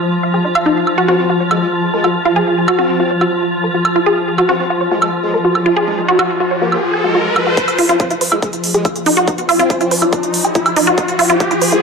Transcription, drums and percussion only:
0.55 high woodblock medium
0.87 high woodblock soft
1.51 high woodblock medium
2.04 high woodblock soft
2.68 high woodblock medium
3.21 high woodblock soft
3.85 high woodblock medium
4.38 high woodblock soft
5.02 high woodblock medium
5.55 high woodblock soft
6.19 high woodblock medium
6.72 high woodblock soft
7.36 high woodblock medium
7.57 kick loud
7.57 closed hi-hat medium
7.68 closed hi-hat medium
7.68 high woodblock soft
7.79 open hi-hat loud
7.89 closed hi-hat medium
8.00 kick loud
8.00 closed hi-hat medium
8.10 closed hi-hat medium
8.21 open hi-hat loud
8.32 closed hi-hat medium
8.32 high woodblock medium
8.42 kick loud
8.42 closed hi-hat medium
8.53 closed hi-hat medium
8.64 open hi-hat loud
8.74 closed hi-hat medium
8.85 kick loud
8.85 closed hi-hat medium
8.85 high woodblock soft
8.96 closed hi-hat medium
9.06 open hi-hat loud
9.17 closed hi-hat medium
9.28 kick loud
9.28 closed hi-hat medium
9.38 closed hi-hat medium
9.49 open hi-hat loud
9.49 high woodblock medium
9.59 closed hi-hat medium
9.70 kick loud
9.70 closed hi-hat medium
9.81 closed hi-hat medium
9.91 open hi-hat loud
10.02 closed hi-hat medium
10.02 high woodblock soft
10.13 kick loud
10.13 closed hi-hat medium
10.23 closed hi-hat medium
10.34 open hi-hat loud
10.45 closed hi-hat medium
10.55 kick loud
10.55 closed hi-hat medium
10.66 closed hi-hat medium
10.66 high woodblock medium
10.76 open hi-hat loud
10.87 closed hi-hat medium
10.98 kick loud
10.98 closed hi-hat medium
11.08 closed hi-hat medium
11.19 open hi-hat loud
11.19 high woodblock soft
11.30 closed hi-hat medium
11.40 kick loud
11.40 closed hi-hat medium
11.51 closed hi-hat medium
11.62 open hi-hat loud
11.72 closed hi-hat medium

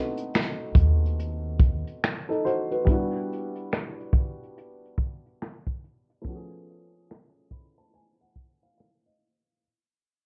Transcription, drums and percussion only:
0.17 closed hi-hat soft
0.34 finger snap medium
0.34 snare medium
0.34 closed hi-hat medium
0.75 kick medium
0.75 closed hi-hat medium
1.06 closed hi-hat soft
1.19 closed hi-hat medium
1.59 kick medium
1.59 closed hi-hat medium
1.87 closed hi-hat soft
2.04 finger snap loud
2.04 snare loud
2.04 closed hi-hat medium
2.31 closed hi-hat soft
2.46 closed hi-hat medium
2.72 closed hi-hat soft
2.87 kick medium
2.87 closed hi-hat medium
3.33 closed hi-hat medium
3.56 closed hi-hat soft
3.72 finger snap medium
3.72 snare medium
3.72 closed hi-hat medium
4.00 closed hi-hat soft
4.13 kick medium
4.13 closed hi-hat medium
4.43 closed hi-hat soft
4.58 closed hi-hat medium
4.85 closed hi-hat soft
4.98 kick medium
4.98 closed hi-hat soft
5.26 closed hi-hat soft
5.42 finger snap medium
5.42 snare loud
5.42 closed hi-hat medium
5.67 kick medium
5.84 closed hi-hat medium
6.10 closed hi-hat soft
6.25 kick medium
6.25 closed hi-hat medium
6.70 closed hi-hat medium
6.93 closed hi-hat soft
7.10 finger snap medium
7.10 snare medium
7.10 closed hi-hat medium
7.39 closed hi-hat soft
7.51 kick medium
7.51 closed hi-hat medium
7.82 closed hi-hat soft
7.96 closed hi-hat medium
8.36 kick medium
8.36 closed hi-hat medium
8.64 closed hi-hat soft
8.80 finger snap medium
8.80 snare medium
8.80 closed hi-hat medium
9.22 closed hi-hat medium
9.48 closed hi-hat soft

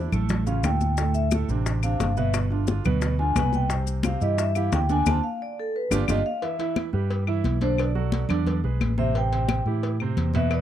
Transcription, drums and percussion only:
0.12 high conga soft
0.12 low conga medium
0.12 claves medium
0.12 maracas soft
0.29 high bongo medium
0.29 high conga soft
0.29 low conga medium
0.29 maracas medium
0.47 high bongo soft
0.47 high conga soft
0.47 maracas medium
0.64 high bongo medium
0.64 low bongo medium
0.64 high conga medium
0.64 claves medium
0.64 maracas medium
0.81 high bongo soft
0.81 high conga medium
0.81 maracas soft
0.97 high bongo medium
0.97 high conga soft
0.97 maracas medium
1.14 high conga soft
1.14 maracas medium
1.31 high bongo medium
1.31 high conga medium
1.31 claves medium
1.31 maracas medium
1.49 high conga soft
1.49 maracas soft
1.66 high bongo medium
1.66 high conga soft
1.66 maracas medium
1.83 high conga soft
1.83 claves medium
1.83 maracas medium
2.00 high bongo medium
2.00 low bongo medium
2.00 high conga medium
2.00 maracas medium
2.17 maracas soft
2.34 high bongo medium
2.34 high conga soft
2.34 claves medium
2.34 maracas medium
2.50 high bongo soft
2.50 high conga soft
2.67 high bongo medium
2.67 high conga loud
2.67 maracas medium
2.85 high conga soft
2.85 low conga medium
2.85 claves medium
2.85 maracas soft
3.01 high bongo medium
3.01 high conga soft
3.01 maracas medium
3.19 high bongo soft
3.19 high conga soft
3.36 high bongo medium
3.36 low bongo medium
3.36 high conga medium
3.36 claves medium
3.36 maracas medium
3.53 high bongo soft
3.53 high conga medium
3.53 maracas soft
3.69 high bongo medium
3.69 high conga soft
3.69 maracas medium
3.86 high conga soft
3.86 maracas medium
4.03 high bongo medium
4.03 high conga loud
4.03 claves medium
4.03 maracas medium
4.20 high conga soft
4.20 maracas soft
4.38 high bongo medium
4.38 high conga soft
4.38 maracas medium
4.55 high conga soft
4.55 claves medium
4.55 maracas medium
4.72 high bongo medium
4.72 low bongo medium
4.72 high conga medium
4.72 maracas medium
4.89 high conga medium
4.89 maracas soft
5.06 low bongo loud
5.06 high conga loud
5.06 claves loud
5.06 maracas loud
5.91 low bongo loud
5.91 high conga medium
5.91 claves medium
5.91 maracas loud
6.08 low bongo loud
6.08 high conga loud
6.08 claves loud
6.08 maracas medium
6.42 cowbell loud
6.42 high conga soft
6.59 cowbell medium
6.59 high conga soft
6.76 cowbell medium
6.76 high conga medium
6.76 claves medium
6.93 high conga soft
7.10 cowbell medium
7.10 high conga soft
7.27 high conga soft
7.27 claves medium
7.44 cowbell medium
7.44 high conga medium
7.61 cowbell medium
7.61 high conga medium
7.78 cowbell loud
7.78 high conga soft
7.78 claves medium
7.95 high conga soft
8.12 cowbell medium
8.12 high conga medium
8.29 cowbell medium
8.29 high conga soft
8.29 low conga medium
8.29 claves medium
8.47 cowbell loud
8.47 high conga soft
8.47 low conga medium
8.64 high conga soft
8.81 cowbell medium
8.81 high conga medium
8.81 claves medium
8.98 high conga medium
9.15 cowbell loud
9.15 high conga soft
9.32 cowbell medium
9.32 high conga soft
9.49 cowbell medium
9.49 high conga medium
9.49 claves medium
9.66 high conga soft
9.83 cowbell loud
9.83 high conga soft
10.00 high conga soft
10.00 claves medium
10.17 cowbell medium
10.17 high conga medium
10.34 cowbell medium
10.34 high conga medium
10.51 cowbell loud
10.51 high conga soft
10.51 claves medium

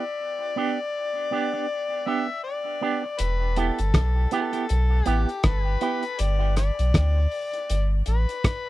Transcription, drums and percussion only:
3.19 closed hi-hat loud
3.56 closed hi-hat medium
3.78 closed hi-hat medium
3.94 kick loud
3.94 cross-stick loud
3.94 closed hi-hat medium
4.31 closed hi-hat medium
4.53 closed hi-hat medium
4.69 closed hi-hat medium
5.06 closed hi-hat medium
5.29 closed hi-hat soft
5.43 kick loud
5.43 cross-stick loud
5.43 closed hi-hat medium
5.81 closed hi-hat medium
6.03 closed hi-hat soft
6.19 closed hi-hat loud
6.56 cross-stick medium
6.56 closed hi-hat medium
6.79 closed hi-hat medium
6.94 kick loud
6.94 cross-stick loud
6.94 closed hi-hat medium
7.31 open hi-hat soft
7.54 closed hi-hat medium
7.70 closed hi-hat medium
8.06 closed hi-hat medium
8.29 closed hi-hat soft
8.44 kick loud
8.44 cross-stick loud
8.44 closed hi-hat medium

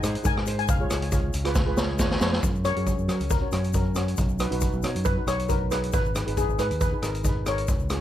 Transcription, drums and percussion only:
0.03 cross-stick medium
0.03 closed hi-hat medium
0.03 shaker medium
0.15 closed hi-hat medium
0.24 kick medium
0.24 closed hi-hat medium
0.24 shaker loud
0.37 cross-stick medium
0.46 closed hi-hat medium
0.46 shaker medium
0.59 closed hi-hat medium
0.68 kick loud
0.68 closed hi-hat medium
0.68 shaker loud
0.90 cross-stick loud
0.90 closed hi-hat medium
0.90 shaker medium
1.02 closed hi-hat medium
1.12 kick medium
1.12 closed hi-hat medium
1.12 shaker medium
1.33 closed hi-hat medium
1.33 shaker medium
1.45 cross-stick medium
1.45 closed hi-hat medium
1.55 kick loud
1.55 snare medium
1.55 shaker loud
1.77 snare medium
1.77 shaker medium
1.99 kick loud
1.99 snare medium
1.99 shaker medium
2.11 snare medium
2.21 snare loud
2.21 shaker medium
2.33 snare medium
2.43 kick loud
2.43 closed hi-hat medium
2.43 shaker medium
2.55 shaker soft
2.65 cross-stick medium
2.65 closed hi-hat medium
2.65 shaker medium
2.76 closed hi-hat medium
2.87 kick medium
2.87 closed hi-hat medium
2.87 shaker medium
2.99 shaker soft
3.09 cross-stick medium
3.09 closed hi-hat medium
3.09 shaker medium
3.20 closed hi-hat medium
3.20 shaker soft
3.30 kick loud
3.30 closed hi-hat medium
3.30 shaker medium
3.52 cross-stick medium
3.52 closed hi-hat medium
3.52 shaker medium
3.64 closed hi-hat soft
3.64 shaker soft
3.73 kick medium
3.73 closed hi-hat medium
3.73 shaker medium
3.95 cross-stick medium
3.95 closed hi-hat medium
3.95 shaker medium
4.08 closed hi-hat medium
4.17 kick medium
4.17 closed hi-hat medium
4.17 shaker medium
4.29 shaker soft
4.39 cross-stick medium
4.39 closed hi-hat medium
4.39 shaker medium
4.52 closed hi-hat medium
4.61 kick medium
4.61 closed hi-hat medium
4.61 shaker medium
4.73 shaker soft
4.83 cross-stick medium
4.83 closed hi-hat medium
4.83 shaker medium
4.95 closed hi-hat medium
4.95 shaker soft
5.05 kick loud
5.05 closed hi-hat medium
5.05 shaker loud
5.27 cross-stick medium
5.27 closed hi-hat medium
5.27 shaker medium
5.39 closed hi-hat medium
5.39 shaker soft
5.49 kick medium
5.49 closed hi-hat medium
5.49 shaker medium
5.71 cross-stick medium
5.71 closed hi-hat medium
5.71 shaker medium
5.83 closed hi-hat medium
5.92 kick loud
5.92 closed hi-hat medium
5.92 shaker loud
6.05 shaker soft
6.15 cross-stick medium
6.15 closed hi-hat medium
6.15 shaker medium
6.28 closed hi-hat medium
6.37 kick medium
6.37 closed hi-hat medium
6.37 shaker medium
6.49 shaker soft
6.59 cross-stick medium
6.59 closed hi-hat medium
6.59 shaker medium
6.71 closed hi-hat medium
6.71 shaker soft
6.81 kick medium
6.81 closed hi-hat medium
6.81 shaker loud
7.02 cross-stick medium
7.02 closed hi-hat medium
7.02 shaker medium
7.15 closed hi-hat medium
7.15 shaker soft
7.24 kick medium
7.24 closed hi-hat medium
7.24 shaker medium
7.46 cross-stick medium
7.46 closed hi-hat medium
7.46 shaker medium
7.58 closed hi-hat medium
7.68 kick medium
7.68 closed hi-hat medium
7.68 shaker medium
7.80 shaker soft
7.90 cross-stick medium
7.90 closed hi-hat medium
7.90 shaker medium

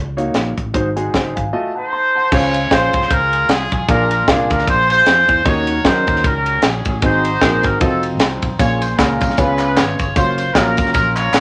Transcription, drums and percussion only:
0.18 closed hi-hat medium
0.34 snare medium
0.34 closed hi-hat medium
0.57 kick medium
0.57 closed hi-hat medium
0.74 kick loud
0.74 closed hi-hat medium
0.97 closed hi-hat medium
1.14 kick medium
1.14 snare loud
1.14 closed hi-hat medium
1.37 kick medium
1.37 closed hi-hat medium
2.32 kick loud
2.32 crash loud
2.54 ride medium
2.71 kick medium
2.71 snare loud
2.71 ride medium
2.93 kick medium
2.93 ride medium
3.02 snare soft
3.11 kick loud
3.11 ride medium
3.33 ride medium
3.49 snare loud
3.49 ride medium
3.72 kick medium
3.72 ride medium
3.89 kick loud
3.89 ride medium
4.11 ride medium
4.28 kick loud
4.28 snare loud
4.28 ride medium
4.50 kick loud
4.50 snare soft
4.50 ride medium
4.59 snare soft
4.67 kick loud
4.67 ride medium
4.90 ride medium
5.06 snare loud
5.06 ride medium
5.29 kick medium
5.29 ride medium
5.46 kick loud
5.46 ride medium
5.67 ride medium
5.85 kick medium
5.85 snare loud
5.85 ride medium
6.07 kick loud
6.07 ride medium
6.16 snare soft
6.24 kick loud
6.24 ride medium
6.46 ride medium
6.62 snare loud
6.62 ride medium
6.85 kick medium
6.85 ride medium
7.02 kick loud
7.02 ride medium
7.25 ride medium
7.41 kick medium
7.41 snare loud
7.41 ride medium
7.63 kick loud
7.63 snare soft
7.63 ride medium
7.81 kick loud
7.81 ride medium
8.03 ride medium
8.19 snare loud
8.19 ride medium
8.42 kick medium
8.42 ride medium
8.59 kick loud
8.59 ride medium
8.59 tambourine medium
8.82 ride medium
8.82 tambourine medium
8.99 kick medium
8.99 snare loud
8.99 clap loud
8.99 ride medium
8.99 tambourine loud
9.20 kick loud
9.20 snare soft
9.20 ride medium
9.20 tambourine medium
9.30 snare soft
9.37 kick loud
9.37 ride medium
9.37 tambourine medium
9.59 clap medium
9.59 ride medium
9.59 tambourine medium
9.77 snare loud
9.77 clap loud
9.77 ride medium
9.77 tambourine loud
9.99 kick medium
9.99 ride medium
9.99 tambourine medium
10.16 kick loud
10.16 ride medium
10.16 tambourine medium
10.38 ride medium
10.38 tambourine medium
10.55 kick medium
10.55 snare loud
10.55 clap loud
10.55 ride medium
10.55 tambourine loud
10.77 kick loud
10.77 ride medium
10.77 tambourine medium
10.86 snare soft
10.94 kick loud
10.94 ride medium
10.94 tambourine medium
11.16 clap medium
11.16 ride medium
11.16 tambourine medium
11.33 snare loud
11.33 clap loud
11.33 ride medium
11.33 tambourine loud

